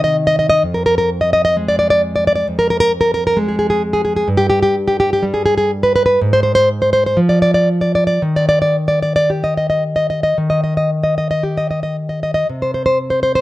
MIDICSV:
0, 0, Header, 1, 2, 480
1, 0, Start_track
1, 0, Tempo, 917431
1, 329, Time_signature, 4, 2, 24, 8
1, 2240, Tempo, 961538
1, 3200, Tempo, 1008403
1, 4160, Tempo, 1065719
1, 5600, Tempo, 1023891
1, 6534, End_track
2, 0, Start_track
2, 0, Title_t, "Nylon-string guitar"
2, 0, Program_c, 0, 24
2, 0, Note_on_c, 0, 48, 68
2, 0, Note_on_c, 0, 51, 67
2, 21, Note_on_c, 0, 75, 117
2, 83, Note_off_c, 0, 75, 0
2, 141, Note_on_c, 0, 75, 105
2, 198, Note_off_c, 0, 75, 0
2, 204, Note_on_c, 0, 75, 101
2, 253, Note_off_c, 0, 75, 0
2, 259, Note_on_c, 0, 75, 111
2, 305, Note_off_c, 0, 48, 0
2, 324, Note_off_c, 0, 75, 0
2, 330, Note_off_c, 0, 51, 0
2, 331, Note_on_c, 0, 41, 76
2, 389, Note_on_c, 0, 70, 81
2, 444, Note_off_c, 0, 70, 0
2, 450, Note_on_c, 0, 70, 99
2, 506, Note_off_c, 0, 70, 0
2, 513, Note_on_c, 0, 70, 104
2, 571, Note_off_c, 0, 70, 0
2, 633, Note_on_c, 0, 75, 93
2, 691, Note_off_c, 0, 75, 0
2, 696, Note_on_c, 0, 75, 106
2, 751, Note_off_c, 0, 75, 0
2, 757, Note_on_c, 0, 75, 115
2, 813, Note_off_c, 0, 75, 0
2, 821, Note_on_c, 0, 56, 67
2, 881, Note_on_c, 0, 74, 100
2, 930, Note_off_c, 0, 74, 0
2, 936, Note_on_c, 0, 74, 103
2, 990, Note_off_c, 0, 74, 0
2, 996, Note_on_c, 0, 74, 114
2, 1051, Note_off_c, 0, 74, 0
2, 1128, Note_on_c, 0, 74, 106
2, 1177, Note_off_c, 0, 74, 0
2, 1189, Note_on_c, 0, 74, 100
2, 1226, Note_off_c, 0, 74, 0
2, 1232, Note_on_c, 0, 74, 105
2, 1265, Note_off_c, 0, 41, 0
2, 1288, Note_off_c, 0, 74, 0
2, 1296, Note_on_c, 0, 41, 79
2, 1354, Note_on_c, 0, 70, 105
2, 1408, Note_off_c, 0, 70, 0
2, 1414, Note_on_c, 0, 70, 115
2, 1460, Note_off_c, 0, 70, 0
2, 1466, Note_on_c, 0, 70, 126
2, 1524, Note_off_c, 0, 70, 0
2, 1528, Note_off_c, 0, 56, 0
2, 1573, Note_on_c, 0, 70, 106
2, 1637, Note_off_c, 0, 70, 0
2, 1643, Note_on_c, 0, 70, 122
2, 1702, Note_off_c, 0, 70, 0
2, 1710, Note_on_c, 0, 70, 118
2, 1761, Note_on_c, 0, 56, 70
2, 1765, Note_off_c, 0, 70, 0
2, 1823, Note_on_c, 0, 68, 79
2, 1871, Note_off_c, 0, 68, 0
2, 1877, Note_on_c, 0, 68, 93
2, 1929, Note_off_c, 0, 68, 0
2, 1935, Note_on_c, 0, 68, 94
2, 1998, Note_off_c, 0, 68, 0
2, 2058, Note_on_c, 0, 68, 88
2, 2111, Note_off_c, 0, 68, 0
2, 2117, Note_on_c, 0, 68, 89
2, 2173, Note_off_c, 0, 68, 0
2, 2179, Note_on_c, 0, 68, 91
2, 2225, Note_off_c, 0, 41, 0
2, 2237, Note_on_c, 0, 43, 82
2, 2240, Note_off_c, 0, 56, 0
2, 2240, Note_off_c, 0, 68, 0
2, 2286, Note_on_c, 0, 67, 99
2, 2341, Note_off_c, 0, 67, 0
2, 2347, Note_on_c, 0, 67, 110
2, 2406, Note_off_c, 0, 67, 0
2, 2412, Note_on_c, 0, 67, 109
2, 2473, Note_off_c, 0, 67, 0
2, 2537, Note_on_c, 0, 67, 103
2, 2592, Note_off_c, 0, 67, 0
2, 2598, Note_on_c, 0, 67, 116
2, 2656, Note_off_c, 0, 67, 0
2, 2664, Note_on_c, 0, 67, 116
2, 2712, Note_on_c, 0, 55, 66
2, 2719, Note_off_c, 0, 67, 0
2, 2767, Note_on_c, 0, 68, 91
2, 2820, Note_off_c, 0, 68, 0
2, 2826, Note_on_c, 0, 68, 100
2, 2880, Note_off_c, 0, 68, 0
2, 2886, Note_on_c, 0, 68, 97
2, 2951, Note_off_c, 0, 68, 0
2, 3014, Note_on_c, 0, 71, 102
2, 3070, Note_off_c, 0, 71, 0
2, 3076, Note_on_c, 0, 71, 98
2, 3121, Note_off_c, 0, 71, 0
2, 3127, Note_on_c, 0, 71, 100
2, 3178, Note_off_c, 0, 43, 0
2, 3194, Note_off_c, 0, 71, 0
2, 3198, Note_off_c, 0, 55, 0
2, 3205, Note_on_c, 0, 44, 90
2, 3260, Note_on_c, 0, 72, 100
2, 3302, Note_off_c, 0, 72, 0
2, 3308, Note_on_c, 0, 72, 100
2, 3359, Note_off_c, 0, 72, 0
2, 3364, Note_on_c, 0, 72, 119
2, 3428, Note_off_c, 0, 72, 0
2, 3492, Note_on_c, 0, 72, 88
2, 3539, Note_off_c, 0, 72, 0
2, 3545, Note_on_c, 0, 72, 104
2, 3603, Note_off_c, 0, 72, 0
2, 3609, Note_on_c, 0, 72, 102
2, 3658, Note_off_c, 0, 44, 0
2, 3658, Note_on_c, 0, 53, 76
2, 3669, Note_off_c, 0, 72, 0
2, 3717, Note_on_c, 0, 74, 96
2, 3773, Note_off_c, 0, 74, 0
2, 3779, Note_on_c, 0, 74, 93
2, 3832, Note_off_c, 0, 74, 0
2, 3837, Note_on_c, 0, 74, 104
2, 3904, Note_off_c, 0, 74, 0
2, 3966, Note_on_c, 0, 74, 93
2, 4026, Note_off_c, 0, 74, 0
2, 4031, Note_on_c, 0, 74, 89
2, 4082, Note_off_c, 0, 74, 0
2, 4088, Note_on_c, 0, 74, 98
2, 4139, Note_off_c, 0, 53, 0
2, 4155, Note_off_c, 0, 74, 0
2, 4160, Note_on_c, 0, 51, 70
2, 4224, Note_on_c, 0, 74, 94
2, 4274, Note_off_c, 0, 74, 0
2, 4280, Note_on_c, 0, 74, 104
2, 4333, Note_off_c, 0, 74, 0
2, 4339, Note_on_c, 0, 74, 110
2, 4401, Note_off_c, 0, 74, 0
2, 4457, Note_on_c, 0, 74, 94
2, 4517, Note_off_c, 0, 74, 0
2, 4522, Note_on_c, 0, 74, 100
2, 4577, Note_off_c, 0, 74, 0
2, 4582, Note_on_c, 0, 74, 116
2, 4644, Note_off_c, 0, 74, 0
2, 4645, Note_on_c, 0, 67, 57
2, 4708, Note_on_c, 0, 75, 64
2, 4764, Note_off_c, 0, 75, 0
2, 4770, Note_on_c, 0, 75, 75
2, 4819, Note_off_c, 0, 75, 0
2, 4825, Note_on_c, 0, 75, 75
2, 4885, Note_off_c, 0, 75, 0
2, 4943, Note_on_c, 0, 75, 68
2, 5001, Note_off_c, 0, 75, 0
2, 5006, Note_on_c, 0, 75, 68
2, 5061, Note_off_c, 0, 75, 0
2, 5066, Note_on_c, 0, 75, 77
2, 5108, Note_off_c, 0, 51, 0
2, 5126, Note_off_c, 0, 75, 0
2, 5131, Note_on_c, 0, 51, 60
2, 5186, Note_on_c, 0, 75, 66
2, 5242, Note_off_c, 0, 75, 0
2, 5248, Note_on_c, 0, 75, 69
2, 5303, Note_off_c, 0, 75, 0
2, 5309, Note_on_c, 0, 75, 76
2, 5363, Note_off_c, 0, 67, 0
2, 5366, Note_off_c, 0, 75, 0
2, 5427, Note_on_c, 0, 75, 63
2, 5484, Note_off_c, 0, 75, 0
2, 5492, Note_on_c, 0, 75, 72
2, 5545, Note_off_c, 0, 75, 0
2, 5550, Note_on_c, 0, 75, 75
2, 5604, Note_off_c, 0, 75, 0
2, 5607, Note_on_c, 0, 67, 52
2, 5673, Note_on_c, 0, 75, 67
2, 5729, Note_off_c, 0, 75, 0
2, 5735, Note_on_c, 0, 75, 72
2, 5788, Note_off_c, 0, 75, 0
2, 5793, Note_on_c, 0, 75, 72
2, 5852, Note_off_c, 0, 75, 0
2, 5916, Note_on_c, 0, 75, 67
2, 5974, Note_off_c, 0, 75, 0
2, 5981, Note_on_c, 0, 75, 68
2, 6028, Note_off_c, 0, 75, 0
2, 6034, Note_on_c, 0, 75, 71
2, 6076, Note_off_c, 0, 51, 0
2, 6092, Note_off_c, 0, 75, 0
2, 6095, Note_off_c, 0, 67, 0
2, 6105, Note_on_c, 0, 48, 59
2, 6164, Note_on_c, 0, 72, 73
2, 6216, Note_off_c, 0, 72, 0
2, 6221, Note_on_c, 0, 72, 77
2, 6269, Note_off_c, 0, 72, 0
2, 6275, Note_on_c, 0, 72, 83
2, 6330, Note_off_c, 0, 72, 0
2, 6390, Note_on_c, 0, 72, 76
2, 6443, Note_off_c, 0, 72, 0
2, 6449, Note_on_c, 0, 72, 88
2, 6502, Note_off_c, 0, 72, 0
2, 6507, Note_on_c, 0, 72, 90
2, 6534, Note_off_c, 0, 48, 0
2, 6534, Note_off_c, 0, 72, 0
2, 6534, End_track
0, 0, End_of_file